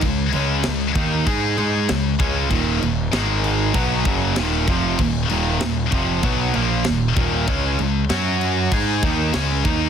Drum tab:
CC |xxxxxxxx|xxxxxxxx|xxxxxxxx|xxxxxxxx|
SD |--o---o-|--o---o-|--o---o-|--o---o-|
BD |o--oo--o|o---oo-o|o--oo--o|o---oo-o|